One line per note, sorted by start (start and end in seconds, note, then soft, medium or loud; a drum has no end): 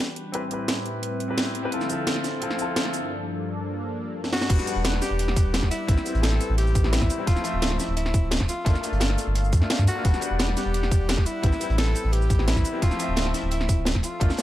0.00 0.32 E3 medium
0.00 1.70 G3 medium
0.00 0.30 D4 medium
0.00 0.32 D4 medium
0.00 0.31 F#4 medium
0.00 0.32 G4 medium
0.00 0.32 B4 medium
0.00 0.33 B4 loud
0.00 0.32 F#5 medium
0.16 closed hi-hat medium
0.32 1.71 A2 medium
0.32 0.40 C4 loud
0.32 2.91 C4 medium
0.32 0.40 E4 medium
0.32 0.41 G4 medium
0.32 1.71 B4 medium
0.32 0.41 B4 loud
0.32 2.91 E5 medium
0.32 closed hi-hat medium
0.48 1.26 C4 medium
0.48 1.27 E4 medium
0.48 1.27 G4 medium
0.48 closed hi-hat medium
0.54 1.28 B4 medium
0.68 snare loud
0.68 closed hi-hat medium
0.86 closed hi-hat medium
1.03 closed hi-hat medium
1.20 closed hi-hat medium
1.28 1.61 C4 medium
1.28 1.62 E4 medium
1.28 1.62 G4 medium
1.28 1.62 B4 medium
1.38 snare loud
1.38 closed hi-hat medium
1.55 closed hi-hat medium
1.63 1.70 C4 medium
1.63 1.70 E4 medium
1.63 1.71 G4 medium
1.63 1.71 B4 medium
1.71 2.92 D3 medium
1.71 4.47 F3 medium
1.71 1.86 C4 medium
1.71 1.87 E4 medium
1.71 1.88 F4 medium
1.71 4.47 A4 medium
1.71 1.88 A4 medium
1.71 closed hi-hat medium
1.81 snare soft
1.81 cabasa soft
1.87 2.39 C4 medium
1.87 2.40 E4 medium
1.87 2.41 F4 medium
1.87 closed hi-hat medium
1.87 cabasa medium
1.92 2.42 A4 loud
2.07 snare loud
2.07 closed hi-hat medium
2.16 snare soft
2.24 snare soft
2.24 closed hi-hat medium
2.24 cabasa medium
2.40 2.55 C4 medium
2.40 2.57 E4 medium
2.40 2.57 F4 medium
2.40 2.58 A4 loud
2.40 closed hi-hat medium
2.50 snare medium
2.57 3.09 C4 medium
2.57 3.09 E4 medium
2.57 3.10 F4 medium
2.57 closed hi-hat medium
2.57 cabasa medium
2.62 3.11 A4 loud
2.76 snare loud
2.76 closed hi-hat medium
2.85 snare soft
2.94 4.48 G2 medium
2.94 4.48 A#3 medium
2.94 4.48 D4 medium
2.94 closed hi-hat medium
2.94 cabasa medium
4.24 snare medium
4.33 4.81 F#4 loud
4.33 snare medium
4.41 snare medium
4.49 4.58 E1 loud
4.49 4.63 G3 medium
4.49 5.87 G3 medium
4.49 4.65 B3 medium
4.49 4.65 D4 medium
4.49 4.66 F#4 loud
4.49 5.87 D5 medium
4.49 5.87 F#5 medium
4.49 kick loud
4.49 closed hi-hat loud
4.49 crash loud
4.59 snare soft
4.59 cabasa soft
4.64 5.85 G3 loud
4.64 5.86 B3 medium
4.64 5.87 D4 medium
4.64 closed hi-hat medium
4.64 cabasa medium
4.70 5.88 F#5 loud
4.76 5.00 E1 medium
4.84 snare loud
4.84 closed hi-hat medium
4.84 closed hi-hat loud
4.93 snare medium
5.02 5.67 G4 loud
5.02 snare soft
5.02 closed hi-hat medium
5.02 cabasa medium
5.11 5.35 E1 medium
5.19 closed hi-hat loud
5.19 closed hi-hat medium
5.28 snare medium
5.36 5.61 E1 loud
5.36 kick loud
5.36 closed hi-hat medium
5.36 cabasa medium
5.54 snare loud
5.54 closed hi-hat medium
5.54 closed hi-hat loud
5.63 5.70 E1 medium
5.63 kick medium
5.63 snare soft
5.63 snare medium
5.71 6.24 E4 loud
5.71 closed hi-hat medium
5.71 cabasa medium
5.87 5.96 A1 loud
5.87 5.95 G3 loud
5.87 5.95 B3 medium
5.87 5.96 C4 medium
5.87 5.96 E4 loud
5.87 7.26 B4 medium
5.87 7.26 G5 medium
5.87 kick loud
5.87 closed hi-hat medium
5.97 snare soft
5.97 cabasa soft
6.03 6.81 G3 medium
6.03 6.82 B3 medium
6.03 6.82 C4 medium
6.03 closed hi-hat medium
6.03 cabasa medium
6.08 6.83 E4 medium
6.15 6.39 A1 medium
6.15 closed hi-hat soft
6.23 6.57 A4 loud
6.23 snare loud
6.23 closed hi-hat medium
6.23 closed hi-hat loud
6.32 snare medium
6.40 closed hi-hat medium
6.40 cabasa medium
6.50 6.74 A1 medium
6.58 6.93 G4 loud
6.58 closed hi-hat loud
6.58 closed hi-hat medium
6.67 cabasa soft
6.75 7.00 A1 loud
6.75 kick loud
6.75 closed hi-hat medium
6.75 cabasa medium
6.83 7.16 G3 medium
6.83 7.16 B3 medium
6.83 7.17 C4 medium
6.83 7.17 E4 medium
6.83 snare soft
6.92 7.26 E4 loud
6.92 snare loud
6.92 closed hi-hat medium
7.01 7.09 A1 medium
7.01 kick medium
7.01 snare soft
7.01 snare medium
7.01 cabasa soft
7.10 closed hi-hat medium
7.10 cabasa medium
7.17 7.25 G3 medium
7.17 7.25 B3 medium
7.17 7.25 C4 medium
7.17 7.26 E4 loud
7.26 7.35 D1 loud
7.26 7.41 F3 medium
7.26 8.47 F3 medium
7.26 7.42 A3 medium
7.26 7.43 C4 medium
7.26 7.43 E4 loud
7.26 7.81 F4 loud
7.26 8.47 E5 medium
7.26 kick loud
7.26 closed hi-hat medium
7.26 closed hi-hat loud
7.36 snare soft
7.36 cabasa soft
7.42 8.46 F3 loud
7.42 8.47 A3 medium
7.42 8.48 C4 medium
7.42 closed hi-hat medium
7.42 cabasa medium
7.47 8.49 E5 loud
7.54 7.78 D1 medium
7.62 snare loud
7.62 closed hi-hat medium
7.70 snare medium
7.79 7.96 E4 medium
7.79 snare soft
7.79 closed hi-hat medium
7.79 cabasa medium
7.88 8.13 D1 medium
7.97 8.29 E4 medium
7.97 closed hi-hat medium
8.06 snare medium
8.14 8.39 D1 loud
8.14 kick loud
8.14 closed hi-hat medium
8.14 cabasa medium
8.31 snare loud
8.31 closed hi-hat medium
8.40 8.48 D1 medium
8.40 kick medium
8.40 snare soft
8.49 8.97 F4 medium
8.49 10.03 A4 medium
8.49 10.03 F5 medium
8.49 closed hi-hat medium
8.49 cabasa medium
8.65 8.74 G1 loud
8.65 8.72 A3 loud
8.65 8.73 A#3 medium
8.65 8.73 D4 medium
8.65 8.74 F4 loud
8.65 kick loud
8.65 closed hi-hat medium
8.75 snare soft
8.75 cabasa soft
8.81 9.58 A3 medium
8.81 9.59 A#3 medium
8.81 9.60 D4 medium
8.81 closed hi-hat medium
8.81 cabasa medium
8.86 9.61 F4 medium
8.92 9.17 G1 medium
8.92 closed hi-hat soft
9.00 snare loud
9.00 closed hi-hat medium
9.09 snare medium
9.09 snare soft
9.18 closed hi-hat medium
9.18 cabasa medium
9.27 9.54 G1 medium
9.35 closed hi-hat medium
9.44 cabasa soft
9.53 9.61 G2 loud
9.53 kick loud
9.53 closed hi-hat medium
9.53 cabasa medium
9.60 9.94 A3 medium
9.60 9.94 A#3 medium
9.60 9.94 D4 medium
9.60 9.95 F4 medium
9.60 snare soft
9.70 snare loud
9.70 closed hi-hat medium
9.79 9.87 G2 medium
9.79 kick medium
9.79 snare soft
9.79 cabasa soft
9.87 10.36 F#4 loud
9.87 closed hi-hat medium
9.87 cabasa medium
9.95 10.02 A3 medium
9.95 10.03 A#3 medium
9.95 10.03 D4 medium
9.95 10.04 F4 loud
10.04 10.13 E1 loud
10.04 10.18 G3 medium
10.04 11.42 G3 medium
10.04 10.20 B3 medium
10.04 10.21 F#4 loud
10.04 11.42 D5 medium
10.04 11.42 F#5 medium
10.04 kick loud
10.04 closed hi-hat medium
10.14 snare soft
10.14 cabasa soft
10.20 11.40 G3 loud
10.20 11.41 B3 medium
10.20 11.42 D4 medium
10.20 closed hi-hat medium
10.20 cabasa medium
10.25 11.43 F#5 loud
10.31 10.55 E1 medium
10.39 snare loud
10.39 closed hi-hat medium
10.48 snare medium
10.48 snare soft
10.57 11.28 G4 loud
10.57 snare soft
10.57 closed hi-hat medium
10.57 cabasa medium
10.66 10.90 E1 medium
10.74 closed hi-hat medium
10.83 snare medium
10.91 11.16 E1 loud
10.91 kick loud
10.91 closed hi-hat medium
10.91 cabasa medium
11.09 snare loud
11.09 closed hi-hat medium
11.18 11.25 E1 medium
11.18 kick medium
11.18 snare soft
11.26 11.77 E4 loud
11.26 closed hi-hat medium
11.26 cabasa medium
11.42 11.51 A1 loud
11.42 11.50 G3 loud
11.42 11.50 B3 medium
11.42 11.51 C4 medium
11.42 11.51 E4 loud
11.42 12.81 B4 medium
11.42 12.81 G5 medium
11.42 kick loud
11.42 closed hi-hat medium
11.42 closed hi-hat loud
11.52 snare soft
11.52 cabasa soft
11.58 12.36 G3 medium
11.58 12.37 B3 medium
11.58 12.37 C4 medium
11.58 closed hi-hat medium
11.58 cabasa medium
11.64 12.38 E4 loud
11.70 11.94 A1 medium
11.70 closed hi-hat soft
11.78 12.14 A4 loud
11.78 snare loud
11.78 closed hi-hat medium
11.87 snare medium
11.87 snare soft
11.95 closed hi-hat medium
11.95 cabasa medium
12.04 12.29 A1 medium
12.13 12.49 G4 loud
12.13 closed hi-hat medium
12.22 cabasa soft
12.30 12.55 A1 loud
12.30 kick loud
12.30 closed hi-hat medium
12.30 cabasa medium
12.38 12.71 G3 medium
12.38 12.71 B3 medium
12.38 12.72 C4 medium
12.38 12.72 E4 medium
12.38 snare soft
12.47 12.82 E4 loud
12.47 snare loud
12.47 closed hi-hat medium
12.47 closed hi-hat loud
12.56 12.64 A1 medium
12.56 kick medium
12.56 snare soft
12.56 cabasa soft
12.64 closed hi-hat medium
12.64 cabasa medium
12.72 12.80 G3 medium
12.72 12.80 B3 medium
12.72 12.80 C4 medium
12.72 12.81 E4 loud
12.81 12.90 D1 loud
12.81 12.95 F3 medium
12.81 14.02 F3 medium
12.81 12.97 A3 medium
12.81 12.98 C4 medium
12.81 12.98 E4 loud
12.81 13.36 F4 loud
12.81 14.02 E5 medium
12.81 kick loud
12.81 closed hi-hat medium
12.81 closed hi-hat loud
12.91 snare soft
12.91 cabasa soft
12.97 14.01 F3 loud
12.97 14.02 A3 medium
12.97 14.03 C4 medium
12.97 closed hi-hat medium
12.97 cabasa medium
13.02 14.04 E5 loud
13.08 13.33 D1 medium
13.16 snare loud
13.16 closed hi-hat medium
13.16 closed hi-hat loud
13.25 snare medium
13.25 snare soft
13.34 13.52 E4 medium
13.34 snare soft
13.34 closed hi-hat medium
13.34 cabasa medium
13.43 13.68 D1 medium
13.51 13.84 E4 medium
13.51 closed hi-hat medium
13.51 closed hi-hat loud
13.61 snare medium
13.69 13.94 D1 loud
13.69 kick loud
13.69 closed hi-hat medium
13.69 cabasa medium
13.85 snare loud
13.85 closed hi-hat medium
13.95 14.03 D1 medium
13.95 kick medium
13.95 snare soft
14.03 14.42 F4 medium
14.03 14.42 A4 medium
14.03 14.42 F5 medium
14.03 closed hi-hat medium
14.03 cabasa medium
14.20 14.29 G1 loud
14.20 14.27 A3 loud
14.20 14.28 A#3 medium
14.20 14.28 D4 medium
14.20 14.29 F4 loud
14.20 kick loud
14.20 closed hi-hat medium
14.20 closed hi-hat loud
14.30 snare soft
14.30 cabasa soft
14.36 14.42 A3 medium
14.36 14.42 A#3 medium
14.36 snare loud
14.36 closed hi-hat medium
14.36 cabasa medium